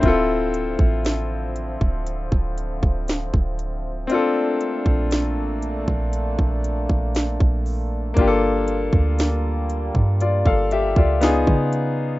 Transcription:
<<
  \new Staff \with { instrumentName = "Grand piano" } { \time 4/4 \key d \minor \tempo 4 = 59 << { c''16 r2. r8. | r1 | r2 <f' d''>16 <a' f''>16 <g' e''>16 <f' d''>8 r8. | } \\ { <c' e' f' a'>1 | <c' d' f' a'>1 | <bes d' f' g' a'>2. <b dis' eis' gis'>4 | } >> }
  \new Staff \with { instrumentName = "Brass ensemble" } { \time 4/4 \key d \minor <d f c' e''>1 | <a bes d'>1 | <g bes f'>2. <cis b dis'>4 | }
  \new Staff \with { instrumentName = "808-style bass" } { \clef bass \time 4/4 \key d \minor d,,8. a,,4 d,,8 d,,8 d,,8 d,,8. | r8. bes,,8 a,,16 bes,,16 bes,,8 bes,,8 bes,,8 bes,,8. | g,,8. d,4 g,8 g,,8 cis,8 cis8. | }
  \new DrumStaff \with { instrumentName = "Drums" } \drummode { \time 4/4 <hh bd>8 hh16 bd16 <hh sn>8 hh16 bd16 hh16 bd16 hh16 bd16 <hh sn>16 bd16 hh8 | hh8 hh16 bd16 <hh sn>8 hh16 bd16 hh16 bd16 hh16 bd16 <hh sn>16 bd16 hho8 | <hh bd>8 hh16 bd16 <hh sn>8 hh16 bd16 hh16 bd16 hh16 bd16 <hh sn>16 bd16 hh8 | }
>>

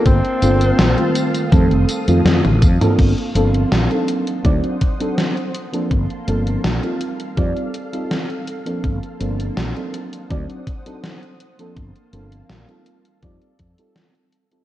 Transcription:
<<
  \new Staff \with { instrumentName = "String machine" } { \time 4/4 \key g \minor \tempo 4 = 82 <bes f'' a'' c'''>4. <a' ees'''>2~ <a' ees'''>8 | <bes f'' a'' c'''>4. <c'' fis'' ees'''>2 <bes f'' a'' c'''>8~ | <bes f'' a'' c'''>4. a'2~ a'8 | <bes a'' c'''>4. <c'' fis'' ees'''>2 <bes f'' a'' c'''>8~ |
<bes f'' a'' c'''>4. a'2~ a'8 | }
  \new Staff \with { instrumentName = "FM electric piano" } { \time 4/4 \key g \minor <bes c' d' f' a'>16 r16 <bes c' d' f' a'>8. <ees g a c' f'>8. <ees g a c' a'>8 r16 <ees g a c' f'>4 <bes c' d' f' a'>16~ | <bes c' d' f' a'>16 r16 <f bes c' d' a'>8. <fis c' d' ees' a'>8. <fis c' d' ees' d''>8 r16 <fis c' d' ees' a'>8. r16 <f bes c' d' a'>16~ | <f bes c' d' a'>16 r16 <f bes c' d' a'>8. <g c' ees' f' a'>8. <g c' ees' f' d''>8 r16 <g c' ees' f' a'>4 <f bes c' d' a'>16~ | <f bes c' d' a'>16 r16 <f bes c' d' a'>8. <fis c' d' ees' a'>8. <fis c' d' ees' d''>8 r16 <fis c' d' ees' a'>8. r16 <f bes c' d' a'>16~ |
<f bes c' d' a'>16 r16 <f bes c' d' a'>8. <g c' ees' f' a'>8. <g c' ees' f' d''>8 r16 <g c' ees' f' a'>4 <g c' ees' f' a'>16 | }
  \new Staff \with { instrumentName = "Tenor saxophone" } { \time 4/4 \key g \minor c'2 r2 | r1 | r1 | r1 |
r1 | }
  \new Staff \with { instrumentName = "Fretless electric bass" } { \clef bass \time 4/4 \key g \minor g,,16 r16 g,,8 bes,,16 r8. f,16 f,,16 r16 f,16 f,16 a,,16 f,16 r16 | g,,16 r16 g,,8 bes,,16 r8. d,16 r4. r16 | g,,16 r16 g,,8 bes,,16 r8. f,16 r4. r16 | g,,16 r16 g,,8 bes,,16 r8. d,16 r4. r16 |
g,,16 r16 g,,8 bes,,16 r8. f,16 r16 f,16 r4 r16 | }
  \new DrumStaff \with { instrumentName = "Drums" } \drummode { \time 4/4 <hh bd tamb>16 hh16 <hh tamb>16 <hh tamb>16 <hh sn tamb>16 hh16 <hh tamb>16 <hh tamb>16 <hh bd tamb>16 hh16 <hh tamb>16 <hh tamb>16 <hh sn tamb tommh>16 <hh tommh>16 <hh bd tamb>16 <hh tamb toml>16 | <cymc hh bd>16 hh16 hh16 hh16 <hh sn>16 hh16 hh16 hh16 <hh bd>16 hh16 <hh bd>16 hh16 <hh sn>16 hh16 hh16 hh16 | <hh bd>16 hh16 hh16 hh16 <hh sn>16 hh16 hh16 hh16 <hh bd>16 hh16 hh16 hh16 <hh sn>16 hh16 hh16 hh16 | <hh bd>16 hh16 hh16 hh16 <hh sn>16 hh16 hh16 hh16 <hh bd>16 hh16 <hh bd>16 hh16 <hh sn>16 hh16 hh16 hh16 |
<hh bd>16 hh16 hh16 hh16 <hh sn>16 hh16 hh16 hh16 <hh bd>16 hh16 <hh bd>16 hh16 <hh sn>16 hh16 hh16 hh16 | }
>>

